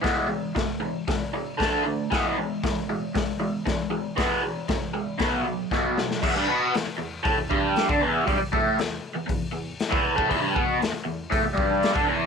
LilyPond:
<<
  \new Staff \with { instrumentName = "Overdriven electric guitar" } { \clef bass \time 4/4 \key e \mixolydian \tempo 4 = 117 <e gis b>8 <e gis>8 <e gis>8 <e gis>8 <e gis>8 <e gis>8 <d a d'>8 <d a>8 | <e gis b>8 <e gis>8 <e gis>8 <e gis>8 <e gis>8 <e gis>8 <e gis>8 <e gis>8 | <e gis b>8 <e gis>8 <e gis>8 <e gis>8 <b, fis b>8 <b, fis>8 <b, fis b>8 <b, fis>8 | <e, e>16 <g, g>16 <b, b>8 e,16 r16 e,8 <a, a>16 e,16 <g, g>8. <d d'>16 <e, e>8 |
<g, g>16 r16 <a, a>8 e,8 r16 e,16 e,8 e,8 r16 <e, e>8 <a, a>16 | <e, e>16 <g, g>16 <b, b>8 e,16 r16 e,8 <a, a>16 e,16 <g, g>8. <d d'>16 <e, e>8 | }
  \new DrumStaff \with { instrumentName = "Drums" } \drummode { \time 4/4 <hho bd sn>4 <hho bd sn>4 <hho bd sn>4 <hho bd sn>4 | <hho bd sn>4 <hho bd sn>4 <hho bd sn>4 <hho bd sn>4 | <hho bd sn>4 <hho bd sn>4 <hho bd sn>4 <bd sn>8 sn16 sn16 | <cymc bd>4 <hho sn>4 <hho bd>8 bd8 <hho sn>16 bd8. |
<hho bd>8 bd8 <hho sn>4 <hho bd>4 <hho sn>16 bd8 bd16 | <hho bd>8 bd8 <hho sn>4 <hho bd>8 bd8 <hho sn>16 bd8. | }
>>